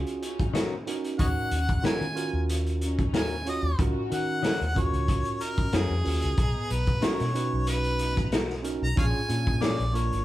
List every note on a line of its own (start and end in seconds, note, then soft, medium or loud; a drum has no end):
0.00 0.47 C#4 medium
0.00 0.47 F4 medium
0.00 0.48 F#4 medium
0.00 0.48 G#4 loud
0.07 closed hi-hat soft
0.20 0.70 C#4 medium
0.20 0.71 D#4 medium
0.20 closed hi-hat medium
0.40 kick medium
0.40 closed hi-hat soft
0.54 0.74 D#3 medium
0.54 0.75 C#4 medium
0.54 0.75 F#4 medium
0.54 0.75 A#4 medium
0.54 snare loud
0.54 closed hi-hat medium
0.86 1.54 C#4 medium
0.86 1.55 D#4 medium
0.86 1.55 F#4 medium
0.86 1.55 A#4 medium
0.86 closed hi-hat medium
1.04 closed hi-hat soft
1.17 1.35 D#2 medium
1.17 1.83 C#4 medium
1.17 1.83 D#4 medium
1.17 1.27 C#5 medium
1.17 1.27 D#5 medium
1.17 1.82 F#5 loud
1.17 kick loud
1.17 closed hi-hat medium
1.51 1.81 D#2 medium
1.51 closed hi-hat medium
1.69 kick medium
1.69 closed hi-hat soft
1.82 2.04 D#3 medium
1.82 2.06 C#4 medium
1.82 2.04 C#4 medium
1.82 2.06 F4 medium
1.82 2.07 F#4 medium
1.82 2.05 F#4 medium
1.82 2.07 A#4 medium
1.82 2.05 A#4 medium
1.82 2.48 G#5 loud
1.82 muted fingered electric bass stroke soft
1.82 snare loud
1.82 closed hi-hat medium
2.01 2.30 D#3 medium
2.01 closed hi-hat soft
2.14 3.06 C#4 medium
2.14 3.06 F4 medium
2.14 3.07 F#4 medium
2.14 3.07 A#4 medium
2.14 closed hi-hat medium
2.33 3.59 D#2 medium
2.50 closed hi-hat medium
2.67 closed hi-hat soft
2.81 3.30 C#4 medium
2.81 3.31 D#4 medium
2.81 closed hi-hat medium
2.99 kick medium
2.99 closed hi-hat soft
3.14 3.34 D#3 medium
3.14 3.34 C#4 medium
3.14 3.35 F#4 medium
3.14 3.35 A#4 medium
3.14 3.47 G#5 medium
3.14 snare loud
3.14 closed hi-hat medium
3.45 3.69 C#4 medium
3.45 3.69 F4 medium
3.45 3.70 F#4 medium
3.45 3.70 C#5 medium
3.45 closed hi-hat medium
3.50 3.79 D#5 loud
3.63 3.77 D#2 medium
3.79 3.94 C#2 loud
3.79 4.02 C#4 medium
3.79 4.44 C#4 medium
3.79 4.44 D#4 medium
3.79 4.02 F4 medium
3.79 4.44 F#4 medium
3.79 4.03 F#4 medium
3.79 4.02 A#4 medium
3.79 kick loud
3.79 closed hi-hat medium
4.10 4.57 D#3 medium
4.10 4.56 C#4 medium
4.10 4.56 D#4 medium
4.10 4.57 F#4 medium
4.10 4.57 A#4 medium
4.10 closed hi-hat medium
4.14 4.81 F#5 loud
4.43 4.63 D#3 medium
4.43 4.64 C#4 medium
4.43 4.64 F#4 medium
4.43 4.65 A#4 medium
4.43 snare loud
4.43 closed hi-hat medium
4.61 4.90 D#2 medium
4.61 closed hi-hat soft
4.75 5.66 C#4 medium
4.75 5.66 F4 medium
4.75 5.67 F#4 medium
4.75 5.67 A#4 medium
4.75 kick medium
4.75 closed hi-hat medium
4.79 5.45 C#5 loud
4.93 5.22 C#2 medium
4.93 closed hi-hat soft
5.08 kick medium
5.08 closed hi-hat medium
5.25 closed hi-hat soft
5.41 5.91 C#4 medium
5.41 5.90 D#4 medium
5.41 5.79 A#4 medium
5.41 closed hi-hat medium
5.58 kick medium
5.58 closed hi-hat soft
5.73 5.89 F#2 medium
5.73 5.93 D#3 medium
5.73 5.94 C#4 medium
5.73 5.94 F#4 medium
5.73 5.94 A#4 medium
5.73 snare loud
5.73 closed hi-hat medium
5.77 6.74 G#4 loud
5.90 6.04 F2 medium
6.04 6.22 D#2 medium
6.04 6.37 C#4 medium
6.04 6.37 F4 medium
6.04 6.38 F#4 medium
6.04 6.38 A#4 medium
6.04 open hi-hat medium
6.22 6.37 C#2 medium
6.22 closed hi-hat soft
6.38 6.53 B1 medium
6.38 7.03 B3 medium
6.38 7.03 D#4 medium
6.38 7.04 A#5 medium
6.38 kick loud
6.38 closed hi-hat medium
6.70 7.00 B1 medium
6.70 7.06 B4 medium
6.70 closed hi-hat medium
6.87 kick medium
6.87 closed hi-hat soft
7.01 7.23 B3 medium
7.01 7.25 C#4 medium
7.01 7.25 D#4 medium
7.01 7.23 D#4 medium
7.01 7.26 F#4 medium
7.01 7.24 F#4 medium
7.01 7.26 A#4 medium
7.01 7.67 C#5 loud
7.01 snare loud
7.01 closed hi-hat medium
7.05 7.24 A#4 medium
7.20 7.50 B2 medium
7.20 snare soft
7.20 closed hi-hat soft
7.34 8.26 C#4 medium
7.34 8.26 D#4 medium
7.34 8.26 F#4 medium
7.34 8.27 B4 medium
7.34 closed hi-hat medium
7.53 8.79 B1 medium
7.67 8.31 B4 loud
7.67 closed hi-hat medium
7.84 closed hi-hat soft
7.99 8.50 B3 medium
7.99 8.50 D#4 medium
7.99 8.50 A#5 medium
7.99 closed hi-hat medium
8.17 kick medium
8.17 closed hi-hat soft
8.32 8.53 B3 medium
8.32 8.54 D#4 medium
8.32 8.54 F#4 medium
8.32 8.54 A#4 medium
8.32 snare loud
8.32 closed hi-hat medium
8.50 snare soft
8.62 8.87 C#4 medium
8.62 8.88 D#4 medium
8.62 8.88 F#4 medium
8.62 8.88 A#4 medium
8.62 closed hi-hat medium
8.82 8.96 B1 medium
8.82 8.98 A#5 loud
8.96 9.13 A#1 loud
8.96 9.20 C#4 medium
8.96 9.20 D4 medium
8.96 9.62 F4 medium
8.96 9.21 F4 medium
8.96 9.62 G#4 medium
8.96 9.21 G#4 medium
8.96 9.62 C#5 medium
8.96 9.07 C#5 medium
8.96 9.05 F5 medium
8.96 9.64 G#5 loud
8.96 kick loud
8.96 closed hi-hat medium
9.29 9.76 A#2 medium
9.29 9.76 C#4 medium
9.29 9.76 D4 medium
9.29 9.76 F4 medium
9.29 9.77 G#4 medium
9.29 closed hi-hat medium
9.47 kick medium
9.62 9.82 A#3 medium
9.62 9.83 D4 medium
9.62 9.83 G#4 medium
9.62 9.84 C#5 medium
9.62 9.97 D5 loud
9.62 snare loud
9.62 closed hi-hat medium
9.79 10.09 A#1 medium
9.79 closed hi-hat soft
9.93 10.25 A#3 medium
9.93 10.25 D4 medium
9.93 10.25 F4 medium
9.93 10.25 A#4 medium
9.93 10.25 C#5 medium
9.93 closed hi-hat medium
10.13 10.25 G#1 medium
10.13 closed hi-hat soft